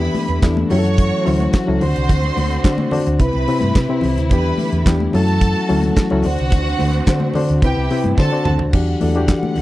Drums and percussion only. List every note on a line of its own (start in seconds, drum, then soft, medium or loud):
0.01 muted conga soft
0.15 open hi-hat medium
0.15 high conga medium
0.28 closed hi-hat soft
0.42 kick loud
0.42 snare loud
0.42 clap medium
0.42 closed hi-hat medium
0.57 muted conga soft
0.57 high conga medium
0.70 open hi-hat medium
0.70 low conga medium
0.85 closed hi-hat medium
0.98 kick loud
0.98 closed hi-hat medium
1.26 open hi-hat medium
1.40 closed hi-hat soft
1.40 high conga medium
1.53 kick loud
1.53 snare loud
1.53 clap medium
1.53 closed hi-hat medium
1.53 muted conga soft
1.81 open hi-hat medium
1.81 low conga medium
1.96 closed hi-hat medium
2.09 kick loud
2.09 closed hi-hat medium
2.09 low conga medium
2.23 muted conga soft
2.37 open hi-hat medium
2.37 high conga medium
2.51 closed hi-hat soft
2.64 kick loud
2.64 snare loud
2.64 clap medium
2.64 closed hi-hat medium
2.64 muted conga soft
2.78 muted conga soft
2.78 high conga medium
2.91 open hi-hat medium
2.91 low conga medium
3.07 closed hi-hat medium
3.20 kick loud
3.20 closed hi-hat medium
3.33 muted conga soft
3.48 open hi-hat medium
3.61 closed hi-hat soft
3.61 high conga medium
3.74 kick loud
3.74 snare loud
3.74 clap medium
3.74 closed hi-hat medium
3.74 muted conga soft
4.01 open hi-hat medium
4.01 low conga medium
4.18 closed hi-hat medium
4.29 kick loud
4.29 closed hi-hat medium
4.29 low conga medium
4.58 open hi-hat medium
4.58 high conga medium
4.73 closed hi-hat soft
4.86 kick loud
4.86 snare loud
4.86 clap medium
4.86 closed hi-hat medium
4.86 muted conga soft
5.00 high conga medium
5.13 open hi-hat medium
5.13 low conga medium
5.28 closed hi-hat medium
5.41 kick loud
5.41 closed hi-hat medium
5.69 open hi-hat medium
5.82 closed hi-hat soft
5.82 high conga medium
5.96 kick loud
5.96 snare loud
5.96 clap medium
5.96 closed hi-hat medium
5.96 muted conga soft
6.10 muted conga soft
6.23 open hi-hat medium
6.23 low conga medium
6.39 closed hi-hat medium
6.50 kick loud
6.50 closed hi-hat medium
6.50 muted conga soft
6.50 low conga medium
6.79 open hi-hat medium
6.79 high conga medium
6.93 closed hi-hat soft
7.06 kick loud
7.06 snare loud
7.06 clap loud
7.06 closed hi-hat medium
7.06 muted conga soft
7.20 high conga medium
7.34 open hi-hat medium
7.34 low conga medium
7.49 closed hi-hat medium
7.62 kick loud
7.62 closed hi-hat medium
7.62 muted conga soft
7.90 open hi-hat medium
8.04 closed hi-hat soft
8.04 high conga medium
8.18 kick loud
8.18 snare medium
8.45 mid tom medium
8.45 low conga medium
8.59 floor tom medium
8.73 kick loud
8.73 crash medium
8.73 low conga medium
9.01 open hi-hat medium
9.01 high conga medium
9.15 closed hi-hat soft
9.28 kick loud
9.28 snare loud
9.28 clap medium
9.28 closed hi-hat medium
9.43 muted conga soft
9.43 high conga medium
9.56 open hi-hat medium
9.56 low conga medium